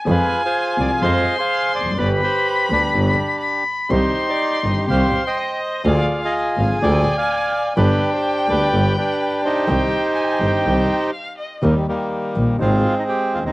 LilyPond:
<<
  \new Staff \with { instrumentName = "Violin" } { \time 4/4 \key c \minor \tempo 4 = 124 aes''2 c'''2 | b''2. b''4 | c'''2 c'''4 ees''4 | f''4 aes''2. |
g''1 | g''4 aes''8 g''4. f''8 ees''8 | \key ees \major r1 | }
  \new Staff \with { instrumentName = "Bandoneon" } { \time 4/4 \key c \minor << { b'8. c''8. d''8 ees''8. f''8. d''8 | d''8 c''4 b'4 r4. | c''8. d''8. ees''8 f''8. g''8. r8 | d''8. ees''8. f''8 g''8. aes''8. r8 |
b'8. c''8. d''4 b'4 c''8~ | c''2. r4 | \key ees \major bes8 bes4. f'8. ees'16 g'8 f'16 ees'16 | } \\ { <f' aes'>8. <f' aes'>4~ <f' aes'>16 <aes' c''>8. <aes' c''>4~ <aes' c''>16 | <g' b'>8 g'4 <d' g'>2 r8 | <ees' g'>8. g'4~ g'16 c''8. <c'' ees''>4~ <c'' ees''>16 | <f' aes'>8. aes'4~ aes'16 d''8. <d'' f''>4~ <d'' f''>16 |
<d' g'>8. g'8. <g' b'>4 <d' g'>4 <ees' g'>8~ | <ees' g'>2. r4 | <ees g>8 <ees g>4. <aes c'>4.~ <aes c'>16 <aes c'>16 | } >> }
  \new Staff \with { instrumentName = "Grand piano" } { \clef bass \time 4/4 \key c \minor <f, f aes c' aes'>8 r4 <c, c f aes c' aes'>8 <f, f aes c' aes'>8 r4 r32 e,32 f,32 fis,32 | <g,, g, d g b g'>8 r4 <d, d g b g'>8 <g,, g, d g b g'>8 r4. | <c, c ees g c' g'>8 r4 <g,, g, ees g c' g'>8 <c, c ees g c' g'>8 r4. | <d, d f aes f'>8 r4 <aes,, aes, d f aes f'>8 <d, d f aes f'>8 r4. |
<g,, g, d g b g'>8 r4 <d, d g b g'>8 <g,, g, d g b g'>8 r4. | <c, c ees g c' g'>8 r4 <g,, g, ees g c' g'>8 <c, c ees g c' g'>8 r4. | \key ees \major <ees, ees g bes g'>8 r4 <bes,, bes, ees g bes g'>8 <aes,, aes, c ees aes ees'>8 r4 r32 d,32 ees,32 r32 | }
  \new Staff \with { instrumentName = "Double bass" } { \clef bass \time 4/4 \key c \minor f,8 r4 c,8 f,8 r4 f,,8 | g,,8 r4 d,8 g,,8 r4. | c,8 r4 g,,8 c,8 r4. | d,8 r4 aes,,8 d,8 r4. |
g,,8 r4 d,8 g,,8 r4. | c,8 r4 g,,8 c,8 r4. | \key ees \major ees,8 r4 bes,,8 aes,,8 r4 ees,8 | }
>>